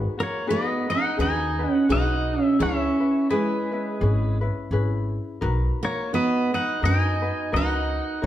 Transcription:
0.00 0.17 D#4 medium
0.00 0.16 F#4 loud
0.00 0.17 G#4 medium
0.00 0.18 B4 medium
0.17 0.47 A#3 medium
0.17 0.46 D#4 soft
0.17 0.46 F#4 soft
0.17 0.47 A#4 medium
0.23 0.49 C#5 medium
0.47 0.86 B3 medium
0.47 0.88 D#4 medium
0.47 0.88 F#4 medium
0.47 0.87 G#4 medium
0.47 0.86 B4 medium
0.51 0.89 D#5 medium
0.87 1.17 D#4 soft
0.87 1.17 D#4 medium
0.87 1.17 F#4 soft
0.87 1.18 B4 soft
0.87 1.17 D#5 medium
0.92 1.21 F#5 loud
1.17 1.64 D#2 medium
1.17 1.58 D#4 medium
1.17 1.69 D#4 medium
1.17 1.58 F#4 medium
1.17 1.58 G#4 medium
1.17 1.57 B4 medium
1.21 1.86 D#5 medium
1.21 1.75 G#5 loud
1.59 1.89 D#4 soft
1.59 1.89 F#4 soft
1.59 1.89 B4 medium
1.69 1.86 C#4 medium
1.75 1.92 F#5 loud
1.89 2.35 B1 medium
1.89 2.59 D#4 medium
1.89 2.39 D#4 medium
1.89 2.60 F#4 medium
1.89 2.59 G#4 medium
1.89 2.60 B4 medium
1.89 2.57 D#5 medium
1.89 2.45 F#5 medium
2.39 2.56 C#4 medium
2.45 2.63 E5 medium
2.59 2.86 C#2 loud
2.59 2.99 C#4 medium
2.59 3.26 C#4 medium
2.59 3.00 E4 medium
2.59 2.99 G#4 medium
2.59 2.99 B4 medium
2.59 3.27 C#5 medium
2.59 3.33 E5 loud
3.00 3.30 C#4 soft
3.00 3.31 E4 soft
3.00 3.30 B4 medium
3.30 4.37 G#3 medium
3.30 3.71 C#4 medium
3.30 3.71 E4 medium
3.30 3.70 G#4 medium
3.30 4.37 G#4 medium
3.30 4.37 B4 medium
3.30 3.70 B4 medium
3.72 4.00 C#4 soft
3.72 4.02 E4 soft
3.72 4.01 B4 medium
4.01 4.47 G#1 loud
4.01 4.41 C#4 medium
4.01 4.41 E4 medium
4.01 4.41 G#4 medium
4.01 4.40 B4 medium
4.41 4.71 C#4 medium
4.41 4.71 E4 medium
4.41 4.71 B4 medium
4.71 5.17 G#1 medium
4.71 5.41 C#4 medium
4.71 5.42 E4 loud
4.71 5.41 G#4 medium
4.71 5.42 B4 medium
5.41 5.68 B1 loud
5.41 5.82 D#4 medium
5.41 5.81 F#4 medium
5.41 5.81 A#4 medium
5.41 5.82 B4 loud
5.83 6.10 A#3 medium
5.83 6.11 D#4 soft
5.83 6.12 F#4 soft
5.83 6.11 A#4 medium
5.83 6.14 C#5 medium
6.13 6.50 B3 medium
6.13 6.52 D#4 medium
6.13 6.52 F#4 medium
6.13 6.50 B4 medium
6.13 6.51 B4 medium
6.13 6.51 D#5 medium
6.51 6.81 D#4 soft
6.51 6.82 D#4 medium
6.51 6.81 F#4 soft
6.51 6.82 B4 medium
6.51 6.82 D#5 medium
6.51 6.85 F#5 medium
6.81 7.28 F#2 medium
6.81 7.23 D#4 medium
6.81 7.21 F#4 medium
6.81 7.22 A#4 medium
6.81 7.21 B4 medium
6.81 7.50 D#5 medium
6.85 7.50 D#4 medium
6.85 7.57 G#5 loud
7.22 7.51 D#4 soft
7.22 7.52 F#4 medium
7.22 7.52 B4 medium
7.52 7.99 C#2 medium
7.52 8.22 D#4 medium
7.52 8.22 F#4 medium
7.52 8.21 A#4 medium
7.52 8.23 B4 medium
7.52 8.20 D#5 medium
7.56 8.21 D#4 medium
7.56 8.26 F#5 medium
8.22 8.26 D#4 medium
8.22 8.26 G4 medium
8.22 8.26 A#4 medium
8.22 8.26 C#5 medium

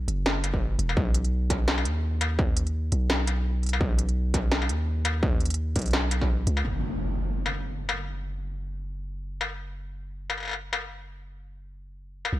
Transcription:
0.08 0.78 F#1 medium
0.08 closed hi-hat medium
0.26 snare loud
0.44 closed hi-hat medium
0.44 struck metal soft
0.54 kick medium
0.79 0.95 E1 medium
0.79 closed hi-hat medium
0.89 struck metal medium
0.97 1.87 B1 loud
0.97 kick loud
1.14 closed hi-hat medium
1.24 closed hi-hat soft
1.50 kick medium
1.50 snare soft
1.50 closed hi-hat medium
1.68 snare loud
1.78 struck metal soft
1.85 2.91 D#2 medium
1.85 closed hi-hat medium
2.21 closed hi-hat medium
2.21 struck metal medium
2.39 kick loud
2.57 closed hi-hat medium
2.67 closed hi-hat soft
2.92 3.80 B1 medium
2.92 closed hi-hat medium
3.10 snare loud
3.27 closed hi-hat medium
3.27 struck metal soft
3.63 closed hi-hat soft
3.66 closed hi-hat soft
3.69 closed hi-hat soft
3.73 struck metal medium
3.81 4.71 B1 loud
3.81 kick loud
3.99 closed hi-hat medium
4.09 closed hi-hat soft
4.34 kick medium
4.34 snare soft
4.34 closed hi-hat medium
4.52 snare loud
4.62 struck metal medium
4.69 5.75 D#2 medium
4.69 closed hi-hat medium
5.05 closed hi-hat medium
5.05 struck metal medium
5.23 kick loud
5.40 closed hi-hat soft
5.45 closed hi-hat soft
5.50 closed hi-hat medium
5.54 closed hi-hat medium
5.76 6.46 B1 medium
5.76 kick medium
5.76 closed hi-hat medium
5.79 closed hi-hat medium
5.82 closed hi-hat soft
5.86 closed hi-hat soft
5.88 closed hi-hat soft
5.91 snare loud
5.91 closed hi-hat soft
6.11 closed hi-hat medium
6.11 struck metal soft
6.21 kick medium
6.21 snare soft
6.47 6.64 C#2 medium
6.47 closed hi-hat medium
6.57 struck metal medium
6.65 12.31 F#1 medium
6.65 impact medium
7.46 struck metal medium
7.89 struck metal medium
9.41 struck metal medium
10.30 struck metal soft
10.38 struck metal soft
10.40 struck metal soft
10.43 struck metal soft
10.45 struck metal soft
10.48 struck metal soft
10.49 struck metal soft
10.51 struck metal soft
10.53 struck metal soft
10.73 struck metal medium
12.25 struck metal soft
12.33 12.39 B1 medium

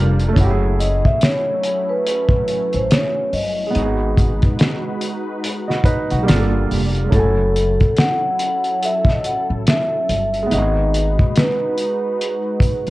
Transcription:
0.00 0.34 F1 medium
0.00 0.34 G3 medium
0.00 0.35 G3 medium
0.00 0.35 A#3 medium
0.00 0.35 D4 medium
0.00 0.36 D4 medium
0.00 0.35 F4 medium
0.00 0.37 F4 medium
0.00 0.38 A4 medium
0.20 closed hi-hat soft
0.29 3.66 A3 medium
0.33 3.71 F#3 medium
0.33 3.71 A3 medium
0.33 3.68 C#4 medium
0.33 3.71 C#4 medium
0.33 3.70 E4 medium
0.33 3.71 E4 medium
0.33 kick loud
0.37 1.01 F#1 loud
0.37 3.72 F#4 medium
0.37 closed hi-hat medium
0.44 0.48 G4 medium
0.51 3.77 G#4 medium
0.79 1.05 D#5 medium
0.79 closed hi-hat medium
1.05 1.12 E5 loud
1.05 kick medium
1.21 1.91 C#5 loud
1.21 snare loud
1.21 closed hi-hat medium
1.64 closed hi-hat medium
1.89 2.76 B4 medium
2.07 closed hi-hat medium
2.29 kick medium
2.48 closed hi-hat medium
2.73 2.89 A1 medium
2.73 2.91 C5 medium
2.73 closed hi-hat soft
2.91 3.34 C#5 medium
2.91 snare loud
2.91 closed hi-hat medium
3.33 3.72 G1 medium
3.33 4.13 D#5 medium
3.33 open hi-hat medium
3.67 6.20 G#3 medium
3.67 6.22 B3 medium
3.74 4.39 G#1 medium
3.74 6.25 G#3 medium
3.74 5.40 D#4 medium
3.74 6.25 D#4 medium
3.74 6.25 F#4 medium
3.74 5.42 F#4 medium
3.74 6.25 B4 medium
3.74 closed hi-hat medium
3.82 5.44 G#4 medium
4.17 kick loud
4.17 closed hi-hat medium
4.42 kick medium
4.42 closed hi-hat soft
4.59 snare loud
4.59 closed hi-hat medium
5.01 closed hi-hat medium
5.44 closed hi-hat medium
5.68 5.85 F#4 medium
5.68 5.84 D#5 medium
5.68 snare soft
5.84 6.10 D#4 medium
5.84 6.09 B4 medium
5.84 kick loud
5.84 closed hi-hat medium
6.10 6.27 B1 medium
6.10 6.51 F#4 medium
6.10 closed hi-hat soft
6.23 7.10 G3 medium
6.23 7.10 A#3 medium
6.23 7.11 D4 medium
6.27 6.68 G1 medium
6.27 7.11 G3 medium
6.27 7.11 A#3 medium
6.27 7.11 D4 medium
6.27 7.11 F4 medium
6.27 7.12 F4 medium
6.27 6.37 G#4 medium
6.27 snare loud
6.27 closed hi-hat loud
6.37 7.17 A4 medium
6.71 7.10 F1 medium
6.71 open hi-hat medium
6.95 closed hi-hat soft
7.04 7.16 G#3 medium
7.08 10.45 A3 medium
7.08 10.44 C#4 medium
7.08 10.46 E4 medium
7.08 10.47 A4 medium
7.12 7.76 F#1 loud
7.12 10.47 F#3 medium
7.12 10.47 C#4 medium
7.12 10.48 F#4 medium
7.12 8.00 A4 loud
7.12 kick loud
7.12 closed hi-hat medium
7.19 10.50 G#5 medium
7.56 closed hi-hat medium
7.80 kick medium
7.80 closed hi-hat soft
7.97 8.84 F#5 loud
7.97 snare loud
7.97 closed hi-hat medium
8.39 closed hi-hat medium
8.64 closed hi-hat soft
8.83 9.09 E5 loud
8.83 closed hi-hat medium
9.05 kick loud
9.05 snare soft
9.10 9.25 D#5 medium
9.24 9.44 F#5 medium
9.24 closed hi-hat medium
9.50 9.65 A1 medium
9.67 10.54 E5 loud
9.67 snare loud
9.67 closed hi-hat medium
10.09 10.49 G1 medium
10.09 closed hi-hat medium
10.34 closed hi-hat soft
10.43 12.90 G#3 medium
10.43 12.90 B3 medium
10.50 11.15 G#1 loud
10.50 12.90 G#3 medium
10.50 12.90 D#4 medium
10.50 12.90 F#4 medium
10.50 12.90 B4 medium
10.50 11.38 D#5 loud
10.50 closed hi-hat medium
10.54 12.90 F#4 medium
10.54 12.90 G#4 medium
10.94 closed hi-hat medium
11.19 kick medium
11.36 12.90 B4 medium
11.36 snare loud
11.36 closed hi-hat medium
11.78 closed hi-hat medium
12.21 closed hi-hat medium
12.60 kick medium
12.60 closed hi-hat medium
12.87 closed hi-hat soft

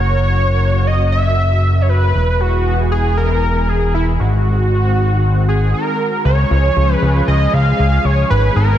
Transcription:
0.00 2.12 F#1 medium
0.00 2.11 C#3 medium
0.00 2.11 F#3 medium
0.00 2.11 A#3 medium
0.00 2.11 F#4 medium
0.00 0.88 C#5 loud
0.87 1.12 D#5 loud
1.12 1.83 E5 loud
1.82 1.91 C#5 medium
1.89 2.42 B4 loud
2.15 4.17 E1 medium
2.15 4.18 E3 medium
2.15 6.21 G#3 medium
2.15 4.18 B3 medium
2.15 4.18 G#4 medium
2.40 2.91 F#4 loud
2.92 3.16 G#4 loud
3.17 3.70 A#4 loud
3.69 3.94 G#4 loud
3.94 4.06 E4 medium
4.20 5.74 G#1 medium
4.20 6.23 D#3 medium
4.20 6.23 C4 medium
4.20 5.44 F#4 loud
4.20 6.23 F#4 medium
5.48 5.72 G#4 medium
5.74 6.22 A#4 medium
6.25 6.45 C#2 loud
6.25 8.28 F3 medium
6.25 8.78 G#3 medium
6.25 8.29 C#4 medium
6.25 8.78 G#4 loud
6.25 6.94 C#5 loud
6.51 6.70 C#2 medium
6.76 6.96 C#2 medium
6.94 7.24 B4 loud
7.02 7.22 C#2 medium
7.28 7.47 C#2 loud
7.28 7.55 D#5 loud
7.53 7.73 C#2 loud
7.53 8.06 F5 loud
7.79 7.99 C#2 loud
8.05 8.24 C#2 medium
8.05 8.30 C#5 loud
8.30 8.50 G#1 loud
8.30 8.78 D#3 medium
8.30 8.78 B3 medium
8.30 8.54 B4 loud
8.56 8.76 G#1 medium
8.56 8.78 A#4 loud

